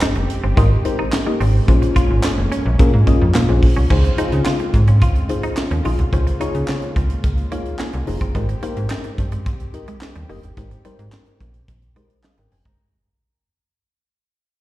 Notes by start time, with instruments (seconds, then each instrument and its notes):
Already playing: analog synth pad G#3 C4 G4
0.01 clean electric guitar D#4, snare, clap, closed hi-hat
0.15 fm bass F1, muted clean electric guitar stroke, closed hi-hat
0.30 closed hi-hat
0.43 fm bass G1, clean electric guitar C4
0.57 fm bass G#1, fm electric piano D#4 G4 A#4 D#5, clean electric guitar F4, kick, closed hi-hat
0.85 fm electric piano D#4 G4 A#4 C5, muted clean electric guitar stroke, closed hi-hat
0.99 clean electric guitar D#4
1.12 muted clean electric guitar stroke, snare, clap, closed hi-hat
1.26 clean electric guitar A#3, fm electric piano D#4 G4 A#4 D#5
1.40 fm bass G#1, clean electric guitar C4, open hi-hat
1.68 fm bass A#1, clean electric guitar A#3, analog synth pad A#3 C#4, fm electric piano C#4 F4 G#4 C5, kick, closed hi-hat
1.82 muted clean electric guitar stroke, closed hi-hat
1.96 clean electric guitar F4, kick, closed hi-hat
2.10 fm bass G#1
2.23 snare, clap, closed hi-hat
2.38 fm bass F1
2.52 clean electric guitar C#4, closed hi-hat
2.65 fm bass A#1
2.79 fm bass A#2, fm electric piano C#4 F4 G#4 A#4, kick, closed hi-hat
2.93 fm bass G#2
3.07 clean electric guitar A#3, fm electric piano C#4 F4 G#4 D#5, kick, closed hi-hat
3.21 fm bass F2
3.34 fm bass A#2, clean electric guitar A#3, snare, clap, closed hi-hat
3.48 fm bass A#1, fm electric piano C#4 F4 G#4 C5, muted clean electric guitar stroke
3.62 kick, open hi-hat
3.76 fm bass C2, clean electric guitar C#4
3.90 fm bass C#2, analog synth pad C#3 G#3 C4 F4, clean electric guitar C#4, fm electric piano D#4 F4 G#4 C5, kick, crash
4.04 muted clean electric guitar stroke, closed hi-hat
4.18 fm electric piano D#4 F4 G#4 C5, clean electric guitar D#4, closed hi-hat
4.32 fm bass C#3, closed hi-hat
4.45 clean electric guitar F4, snare, clap
4.59 muted clean electric guitar stroke, closed hi-hat
4.74 fm bass G#2, kick, closed hi-hat
4.87 clean electric guitar C#4, closed hi-hat
5.02 fm bass C#2, clean electric guitar F4, kick, closed hi-hat
5.15 closed hi-hat
5.29 fm electric piano D#4 F4 G#4 C5, muted clean electric guitar stroke, closed hi-hat
5.43 clean electric guitar D#4, closed hi-hat
5.57 muted clean electric guitar stroke, snare, clap
5.71 fm bass D#2, clean electric guitar C#4, closed hi-hat
5.84 fm bass A#1, fm electric piano D#4 F4 G#4 D#5, clean electric guitar F4, open hi-hat
5.99 fm bass C2, closed hi-hat
6.12 fm bass C#2, analog synth pad A#3, clean electric guitar C#4, fm electric piano D#4 F4 G#4 C5, kick, closed hi-hat
6.27 muted clean electric guitar stroke, closed hi-hat
6.40 fm electric piano D#4 F4 G#4 C#5, clean electric guitar D#4, closed hi-hat
6.55 fm bass C#3, closed hi-hat
6.68 snare, clap
6.82 closed hi-hat
6.96 fm bass C#2, clean electric guitar C4, kick, closed hi-hat
7.10 closed hi-hat
7.24 fm bass C#2, kick, closed hi-hat
7.38 closed hi-hat
7.51 clean electric guitar A#3, fm electric piano D#4 F4 G#4 C#5 F5, closed hi-hat
7.65 closed hi-hat
7.79 clean electric guitar A#3, fm electric piano G#5, snare, clap
7.93 fm bass C2, muted clean electric guitar stroke, closed hi-hat
8.07 fm bass F1, fm electric piano D#4 F4 G#4 C5 A#5, open hi-hat
8.21 fm bass G1, clean electric guitar C4, kick, closed hi-hat
8.35 fm bass G#1, clean electric guitar G#3, analog synth pad C4 G4, fm electric piano D#4 G4 A#4 C5, kick, closed hi-hat
8.49 muted clean electric guitar stroke, closed hi-hat
8.62 clean electric guitar A#3, fm electric piano D#4 G4 A#4 C5, closed hi-hat
8.77 fm bass G#2, closed hi-hat
8.90 clean electric guitar C4, snare, clap
9.04 muted clean electric guitar stroke, closed hi-hat
9.18 fm bass G2, kick, closed hi-hat
9.32 clean electric guitar G#3, closed hi-hat
9.46 fm bass C2, clean electric guitar C4, kick, closed hi-hat
9.60 closed hi-hat
9.74 fm electric piano D#4 G4 A#4 D#5, muted clean electric guitar stroke, closed hi-hat
9.88 clean electric guitar G#3, closed hi-hat
10.01 muted clean electric guitar stroke, snare, clap
10.15 fm bass D#2, clean electric guitar G3, closed hi-hat
10.29 fm bass F1, clean electric guitar A#3, fm electric piano D#4 G4 A#4 D#5, open hi-hat
10.43 fm bass G1, closed hi-hat
10.57 fm bass G#1, clean electric guitar G#3, fm electric piano D#4 G4 A#4 C5, kick, closed hi-hat
10.71 muted clean electric guitar stroke, closed hi-hat
10.85 clean electric guitar G3, fm electric piano D#4 G4 A#4 C5, closed hi-hat
10.99 fm bass G#2, closed hi-hat
11.12 snare, clap
11.26 closed hi-hat
11.40 fm bass A#1, clean electric guitar A#3, kick, closed hi-hat
11.54 closed hi-hat
11.68 fm bass A#1, kick, closed hi-hat
11.82 closed hi-hat
11.96 clean electric guitar G#3, fm electric piano D#4 G4 A#4 C5, closed hi-hat
12.10 closed hi-hat
12.24 clean electric guitar G3, fm electric piano G#4 D#5 F5, snare, clap
12.37 fm bass G#1, fm electric piano A#4 G5, muted clean electric guitar stroke, closed hi-hat
12.52 fm bass F1, fm electric piano C5 G5 G#5, open hi-hat
12.65 fm bass G1, clean electric guitar G#3, fm electric piano A#5, kick